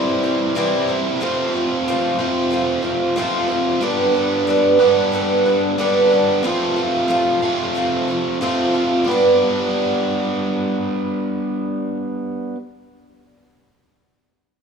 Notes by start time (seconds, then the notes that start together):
Already playing: C3 E3 G3 C4 E4 C5
0.23 G3 C4 E4 C5
0.55 C3 E3 G3 C4 E4 C5
0.88 G3 C4 E4 C5
1.21 F2 C3 F3 A3 C4 F4 C5
1.25 F4
1.54 C4 F4 C5
1.88 F3 A3 C4 F4 C5
2.19 F2 C3 F3 A3 C4 F4 C5
2.51 A3 C4 F4 C5
2.82 C4 F4 C5
3.16 F2 C3 F3 A3 C4 F4 C5
3.20 F4
3.47 F4 C5
3.52 C4
3.80 G2 D3 G3 B3 D4 G4 A4 B4
4.14 D4 A4 B4
4.47 G3 D4 A4 B4
4.79 G2 D3 G3 B3 D4 G4 A4 B4
4.83 D4
5.12 G3 D4 A4 B4
5.46 D4 A4 B4
5.78 G2 D3 G3 B3 D4 G4 A4 B4
6.10 D4 A4 B4
6.43 F2 C3 F3 A3 C4 F4 A4
6.47 F4
6.76 C4 F4 A4
7.08 F3 A3 C4 F4 A4
7.42 F2 C3 F3 A3 C4 F4 A4
7.75 A3 C4 F4 A4
8.08 F4 A4
8.12 C4
8.41 F2 C3 F3 A3 C4 F4 A4
8.74 C4 F4 A4
9.05 G3 B3 D4
9.09 D4 G4 A4 B4